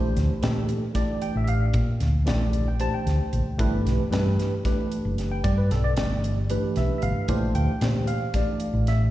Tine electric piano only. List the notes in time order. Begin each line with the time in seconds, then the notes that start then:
Already playing: E3 A3 D4 G4 C5
0.41 E3 A3 D4 G4 A4
0.94 E3 A3 D4 G4 D5
1.22 G5
1.37 E5
1.44 E5
1.48 F5
2.25 E3 A3 D4 G4 D5
2.68 G5
2.79 E3 A3 D4 G4 C5 A5
2.94 G5
3.58 E3 A3 D4 G4 B4
4.10 E3 A3 D4 G4 B4
4.64 E3 A3 D4 G4 B4
5.32 G5
5.44 D5
5.58 B4
5.72 A4
5.84 D5
5.96 E3 A3 D4 G4 D5
6.50 E3 A3 D4 G4 B4
6.77 E5
6.98 E5
7.03 F5
7.28 E3 A3 D4 G4 C5
7.55 G5
7.81 E3 A3 D4 G4 C5
8.08 F5
8.34 E3 A3 D4 G4 D5
8.88 E5